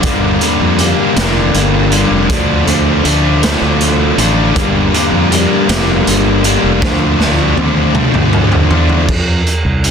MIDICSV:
0, 0, Header, 1, 4, 480
1, 0, Start_track
1, 0, Key_signature, -2, "minor"
1, 0, Tempo, 753769
1, 24, Time_signature, 6, 3, 24, 8
1, 6309, End_track
2, 0, Start_track
2, 0, Title_t, "Distorted electric guitar"
2, 0, Program_c, 0, 30
2, 17, Note_on_c, 0, 43, 95
2, 19, Note_on_c, 0, 50, 95
2, 24, Note_on_c, 0, 55, 96
2, 26, Note_on_c, 0, 58, 103
2, 27, Note_on_c, 0, 62, 96
2, 249, Note_off_c, 0, 43, 0
2, 253, Note_off_c, 0, 50, 0
2, 255, Note_off_c, 0, 55, 0
2, 256, Note_off_c, 0, 58, 0
2, 257, Note_on_c, 0, 43, 81
2, 261, Note_on_c, 0, 50, 84
2, 262, Note_on_c, 0, 55, 91
2, 264, Note_on_c, 0, 58, 89
2, 266, Note_off_c, 0, 62, 0
2, 268, Note_on_c, 0, 62, 89
2, 494, Note_off_c, 0, 43, 0
2, 495, Note_off_c, 0, 50, 0
2, 499, Note_off_c, 0, 55, 0
2, 501, Note_off_c, 0, 58, 0
2, 502, Note_on_c, 0, 43, 84
2, 503, Note_on_c, 0, 50, 83
2, 507, Note_on_c, 0, 55, 83
2, 508, Note_on_c, 0, 58, 84
2, 509, Note_off_c, 0, 62, 0
2, 512, Note_on_c, 0, 62, 90
2, 731, Note_off_c, 0, 43, 0
2, 734, Note_off_c, 0, 50, 0
2, 737, Note_off_c, 0, 55, 0
2, 738, Note_off_c, 0, 58, 0
2, 739, Note_on_c, 0, 43, 95
2, 742, Note_on_c, 0, 50, 99
2, 744, Note_on_c, 0, 55, 102
2, 746, Note_on_c, 0, 58, 106
2, 747, Note_off_c, 0, 62, 0
2, 749, Note_on_c, 0, 62, 120
2, 1213, Note_off_c, 0, 43, 0
2, 1213, Note_off_c, 0, 50, 0
2, 1217, Note_off_c, 0, 55, 0
2, 1219, Note_off_c, 0, 58, 0
2, 1221, Note_on_c, 0, 43, 78
2, 1221, Note_on_c, 0, 50, 84
2, 1224, Note_on_c, 0, 55, 94
2, 1225, Note_off_c, 0, 62, 0
2, 1226, Note_on_c, 0, 58, 90
2, 1228, Note_on_c, 0, 62, 98
2, 1448, Note_off_c, 0, 43, 0
2, 1448, Note_off_c, 0, 50, 0
2, 1450, Note_off_c, 0, 55, 0
2, 1451, Note_off_c, 0, 58, 0
2, 1460, Note_on_c, 0, 50, 104
2, 1465, Note_off_c, 0, 62, 0
2, 1465, Note_on_c, 0, 53, 98
2, 1466, Note_on_c, 0, 57, 96
2, 1468, Note_on_c, 0, 62, 110
2, 1689, Note_off_c, 0, 50, 0
2, 1694, Note_off_c, 0, 53, 0
2, 1697, Note_on_c, 0, 50, 87
2, 1700, Note_off_c, 0, 57, 0
2, 1701, Note_off_c, 0, 62, 0
2, 1702, Note_on_c, 0, 53, 81
2, 1703, Note_on_c, 0, 57, 91
2, 1704, Note_on_c, 0, 62, 92
2, 1929, Note_off_c, 0, 50, 0
2, 1934, Note_off_c, 0, 53, 0
2, 1937, Note_on_c, 0, 50, 80
2, 1941, Note_off_c, 0, 57, 0
2, 1942, Note_on_c, 0, 53, 81
2, 1943, Note_on_c, 0, 57, 94
2, 1944, Note_off_c, 0, 62, 0
2, 1946, Note_on_c, 0, 62, 102
2, 2169, Note_off_c, 0, 50, 0
2, 2175, Note_off_c, 0, 53, 0
2, 2177, Note_on_c, 0, 50, 105
2, 2180, Note_off_c, 0, 57, 0
2, 2182, Note_off_c, 0, 62, 0
2, 2182, Note_on_c, 0, 57, 110
2, 2183, Note_on_c, 0, 53, 99
2, 2184, Note_on_c, 0, 62, 105
2, 2651, Note_off_c, 0, 50, 0
2, 2657, Note_off_c, 0, 53, 0
2, 2659, Note_on_c, 0, 50, 84
2, 2662, Note_off_c, 0, 57, 0
2, 2663, Note_off_c, 0, 62, 0
2, 2664, Note_on_c, 0, 57, 97
2, 2665, Note_on_c, 0, 53, 88
2, 2666, Note_on_c, 0, 62, 98
2, 2887, Note_off_c, 0, 50, 0
2, 2890, Note_off_c, 0, 53, 0
2, 2897, Note_on_c, 0, 43, 105
2, 2900, Note_off_c, 0, 57, 0
2, 2900, Note_on_c, 0, 50, 103
2, 2901, Note_on_c, 0, 55, 103
2, 2903, Note_on_c, 0, 58, 98
2, 2905, Note_off_c, 0, 62, 0
2, 2907, Note_on_c, 0, 62, 119
2, 3131, Note_off_c, 0, 43, 0
2, 3134, Note_off_c, 0, 50, 0
2, 3136, Note_off_c, 0, 55, 0
2, 3138, Note_on_c, 0, 43, 91
2, 3140, Note_off_c, 0, 58, 0
2, 3142, Note_on_c, 0, 50, 85
2, 3144, Note_on_c, 0, 55, 85
2, 3148, Note_off_c, 0, 62, 0
2, 3148, Note_on_c, 0, 58, 93
2, 3150, Note_on_c, 0, 62, 98
2, 3371, Note_off_c, 0, 43, 0
2, 3375, Note_off_c, 0, 50, 0
2, 3378, Note_off_c, 0, 55, 0
2, 3379, Note_on_c, 0, 43, 88
2, 3380, Note_off_c, 0, 58, 0
2, 3382, Note_on_c, 0, 50, 87
2, 3384, Note_off_c, 0, 62, 0
2, 3385, Note_on_c, 0, 55, 90
2, 3386, Note_on_c, 0, 62, 98
2, 3388, Note_on_c, 0, 58, 96
2, 3609, Note_off_c, 0, 43, 0
2, 3612, Note_off_c, 0, 50, 0
2, 3614, Note_off_c, 0, 55, 0
2, 3616, Note_off_c, 0, 58, 0
2, 3616, Note_on_c, 0, 43, 106
2, 3618, Note_off_c, 0, 62, 0
2, 3620, Note_on_c, 0, 50, 112
2, 3621, Note_on_c, 0, 55, 101
2, 3624, Note_on_c, 0, 58, 115
2, 3626, Note_on_c, 0, 62, 106
2, 4092, Note_off_c, 0, 43, 0
2, 4095, Note_off_c, 0, 50, 0
2, 4095, Note_off_c, 0, 55, 0
2, 4098, Note_off_c, 0, 58, 0
2, 4100, Note_off_c, 0, 62, 0
2, 4100, Note_on_c, 0, 43, 82
2, 4102, Note_on_c, 0, 50, 81
2, 4103, Note_on_c, 0, 55, 89
2, 4105, Note_on_c, 0, 58, 86
2, 4108, Note_on_c, 0, 62, 95
2, 4328, Note_off_c, 0, 43, 0
2, 4329, Note_off_c, 0, 50, 0
2, 4329, Note_off_c, 0, 55, 0
2, 4330, Note_off_c, 0, 58, 0
2, 4332, Note_off_c, 0, 62, 0
2, 4339, Note_on_c, 0, 50, 98
2, 4341, Note_on_c, 0, 53, 110
2, 4344, Note_on_c, 0, 57, 113
2, 4347, Note_on_c, 0, 62, 101
2, 4569, Note_off_c, 0, 50, 0
2, 4572, Note_off_c, 0, 53, 0
2, 4575, Note_off_c, 0, 57, 0
2, 4575, Note_off_c, 0, 62, 0
2, 4577, Note_on_c, 0, 50, 81
2, 4580, Note_on_c, 0, 53, 80
2, 4582, Note_on_c, 0, 57, 101
2, 4583, Note_on_c, 0, 62, 91
2, 4808, Note_off_c, 0, 50, 0
2, 4812, Note_off_c, 0, 53, 0
2, 4814, Note_off_c, 0, 57, 0
2, 4815, Note_off_c, 0, 62, 0
2, 4816, Note_on_c, 0, 50, 98
2, 4819, Note_on_c, 0, 53, 92
2, 4822, Note_on_c, 0, 57, 88
2, 4823, Note_on_c, 0, 62, 108
2, 5049, Note_off_c, 0, 50, 0
2, 5052, Note_off_c, 0, 53, 0
2, 5055, Note_off_c, 0, 57, 0
2, 5056, Note_off_c, 0, 62, 0
2, 5057, Note_on_c, 0, 50, 108
2, 5059, Note_on_c, 0, 53, 108
2, 5063, Note_on_c, 0, 57, 112
2, 5063, Note_on_c, 0, 62, 125
2, 5527, Note_off_c, 0, 50, 0
2, 5532, Note_off_c, 0, 53, 0
2, 5534, Note_off_c, 0, 57, 0
2, 5535, Note_on_c, 0, 50, 89
2, 5537, Note_off_c, 0, 62, 0
2, 5540, Note_on_c, 0, 53, 83
2, 5541, Note_on_c, 0, 57, 89
2, 5544, Note_on_c, 0, 62, 93
2, 5766, Note_off_c, 0, 50, 0
2, 5768, Note_off_c, 0, 53, 0
2, 5769, Note_off_c, 0, 57, 0
2, 5770, Note_off_c, 0, 62, 0
2, 6309, End_track
3, 0, Start_track
3, 0, Title_t, "Fingered electric bass"
3, 0, Program_c, 1, 33
3, 24, Note_on_c, 1, 31, 106
3, 232, Note_off_c, 1, 31, 0
3, 384, Note_on_c, 1, 41, 84
3, 593, Note_off_c, 1, 41, 0
3, 741, Note_on_c, 1, 29, 100
3, 951, Note_off_c, 1, 29, 0
3, 981, Note_on_c, 1, 31, 87
3, 1295, Note_off_c, 1, 31, 0
3, 1343, Note_on_c, 1, 29, 92
3, 1447, Note_off_c, 1, 29, 0
3, 1464, Note_on_c, 1, 38, 106
3, 1672, Note_off_c, 1, 38, 0
3, 1700, Note_on_c, 1, 38, 89
3, 1910, Note_off_c, 1, 38, 0
3, 1942, Note_on_c, 1, 38, 91
3, 2255, Note_off_c, 1, 38, 0
3, 2301, Note_on_c, 1, 38, 99
3, 2615, Note_off_c, 1, 38, 0
3, 2661, Note_on_c, 1, 33, 104
3, 2871, Note_off_c, 1, 33, 0
3, 2905, Note_on_c, 1, 31, 107
3, 3113, Note_off_c, 1, 31, 0
3, 3259, Note_on_c, 1, 41, 87
3, 3470, Note_off_c, 1, 41, 0
3, 3624, Note_on_c, 1, 29, 112
3, 3832, Note_off_c, 1, 29, 0
3, 3864, Note_on_c, 1, 31, 93
3, 4177, Note_off_c, 1, 31, 0
3, 4226, Note_on_c, 1, 29, 92
3, 4329, Note_off_c, 1, 29, 0
3, 4344, Note_on_c, 1, 38, 99
3, 4552, Note_off_c, 1, 38, 0
3, 4581, Note_on_c, 1, 38, 83
3, 4791, Note_off_c, 1, 38, 0
3, 4822, Note_on_c, 1, 38, 98
3, 5136, Note_off_c, 1, 38, 0
3, 5184, Note_on_c, 1, 38, 98
3, 5497, Note_off_c, 1, 38, 0
3, 5544, Note_on_c, 1, 40, 106
3, 5753, Note_off_c, 1, 40, 0
3, 5785, Note_on_c, 1, 41, 91
3, 5994, Note_off_c, 1, 41, 0
3, 6143, Note_on_c, 1, 36, 91
3, 6309, Note_off_c, 1, 36, 0
3, 6309, End_track
4, 0, Start_track
4, 0, Title_t, "Drums"
4, 20, Note_on_c, 9, 42, 90
4, 22, Note_on_c, 9, 36, 110
4, 83, Note_off_c, 9, 42, 0
4, 86, Note_off_c, 9, 36, 0
4, 262, Note_on_c, 9, 42, 69
4, 326, Note_off_c, 9, 42, 0
4, 501, Note_on_c, 9, 42, 72
4, 565, Note_off_c, 9, 42, 0
4, 742, Note_on_c, 9, 42, 87
4, 749, Note_on_c, 9, 38, 115
4, 806, Note_off_c, 9, 42, 0
4, 812, Note_off_c, 9, 38, 0
4, 984, Note_on_c, 9, 42, 67
4, 1048, Note_off_c, 9, 42, 0
4, 1221, Note_on_c, 9, 42, 70
4, 1285, Note_off_c, 9, 42, 0
4, 1463, Note_on_c, 9, 36, 107
4, 1463, Note_on_c, 9, 42, 86
4, 1527, Note_off_c, 9, 36, 0
4, 1527, Note_off_c, 9, 42, 0
4, 1703, Note_on_c, 9, 42, 63
4, 1767, Note_off_c, 9, 42, 0
4, 1942, Note_on_c, 9, 42, 73
4, 2006, Note_off_c, 9, 42, 0
4, 2184, Note_on_c, 9, 42, 92
4, 2190, Note_on_c, 9, 38, 114
4, 2248, Note_off_c, 9, 42, 0
4, 2254, Note_off_c, 9, 38, 0
4, 2425, Note_on_c, 9, 42, 68
4, 2488, Note_off_c, 9, 42, 0
4, 2664, Note_on_c, 9, 42, 75
4, 2728, Note_off_c, 9, 42, 0
4, 2904, Note_on_c, 9, 36, 109
4, 2904, Note_on_c, 9, 42, 90
4, 2968, Note_off_c, 9, 36, 0
4, 2968, Note_off_c, 9, 42, 0
4, 3149, Note_on_c, 9, 42, 75
4, 3212, Note_off_c, 9, 42, 0
4, 3388, Note_on_c, 9, 42, 73
4, 3451, Note_off_c, 9, 42, 0
4, 3625, Note_on_c, 9, 42, 102
4, 3631, Note_on_c, 9, 38, 121
4, 3689, Note_off_c, 9, 42, 0
4, 3695, Note_off_c, 9, 38, 0
4, 3867, Note_on_c, 9, 42, 79
4, 3931, Note_off_c, 9, 42, 0
4, 4102, Note_on_c, 9, 42, 70
4, 4166, Note_off_c, 9, 42, 0
4, 4344, Note_on_c, 9, 36, 110
4, 4350, Note_on_c, 9, 38, 64
4, 4407, Note_off_c, 9, 36, 0
4, 4413, Note_off_c, 9, 38, 0
4, 4587, Note_on_c, 9, 38, 68
4, 4651, Note_off_c, 9, 38, 0
4, 4823, Note_on_c, 9, 48, 76
4, 4887, Note_off_c, 9, 48, 0
4, 5061, Note_on_c, 9, 47, 88
4, 5125, Note_off_c, 9, 47, 0
4, 5183, Note_on_c, 9, 45, 77
4, 5247, Note_off_c, 9, 45, 0
4, 5305, Note_on_c, 9, 45, 89
4, 5368, Note_off_c, 9, 45, 0
4, 5425, Note_on_c, 9, 43, 77
4, 5488, Note_off_c, 9, 43, 0
4, 5544, Note_on_c, 9, 43, 103
4, 5608, Note_off_c, 9, 43, 0
4, 5664, Note_on_c, 9, 43, 80
4, 5728, Note_off_c, 9, 43, 0
4, 5784, Note_on_c, 9, 49, 101
4, 5786, Note_on_c, 9, 36, 108
4, 5848, Note_off_c, 9, 49, 0
4, 5850, Note_off_c, 9, 36, 0
4, 6029, Note_on_c, 9, 42, 72
4, 6093, Note_off_c, 9, 42, 0
4, 6266, Note_on_c, 9, 42, 72
4, 6309, Note_off_c, 9, 42, 0
4, 6309, End_track
0, 0, End_of_file